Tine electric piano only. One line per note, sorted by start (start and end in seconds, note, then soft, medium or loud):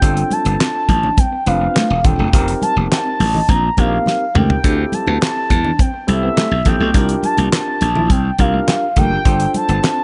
0.02 0.94 C4 medium
0.02 0.94 D4 medium
0.02 0.94 F4 medium
0.02 0.95 A4 medium
1.47 1.93 C4 medium
1.47 1.93 D4 medium
1.47 1.93 F4 medium
1.47 1.93 B4 medium
2.04 2.27 C4 medium
2.04 2.27 D4 medium
2.04 2.28 F4 medium
2.04 2.28 A4 medium
2.33 3.25 C4 medium
2.33 3.25 D#4 medium
2.33 3.26 G4 medium
2.33 3.26 A#4 medium
3.78 4.24 C4 medium
3.78 4.24 D#4 medium
3.78 4.24 G4 medium
3.78 4.24 A#4 medium
4.34 4.58 C4 medium
4.34 4.58 D#4 medium
4.34 4.58 G4 medium
4.34 4.58 A#4 medium
4.64 5.56 C4 medium
4.64 5.56 E4 medium
4.64 5.56 G4 medium
4.64 5.56 A4 medium
6.07 6.54 C4 medium
6.07 6.54 E4 medium
6.07 6.54 G4 medium
6.07 6.54 A4 medium
6.66 6.89 C4 medium
6.66 6.89 E4 medium
6.66 6.89 G4 medium
6.66 6.89 A4 medium
6.94 7.87 D4 medium
6.94 7.87 F4 medium
6.94 7.87 G4 medium
6.94 7.87 A#4 medium
8.39 8.85 D4 medium
8.39 8.85 F4 medium
8.39 8.85 G4 medium
8.39 8.85 A#4 medium
8.96 9.20 D4 medium
8.96 9.20 F4 medium
8.96 9.20 G4 medium
8.96 9.20 A#4 medium
9.25 10.04 D4 medium
9.25 10.04 F4 medium
9.25 10.04 A4 medium
9.25 10.04 C5 medium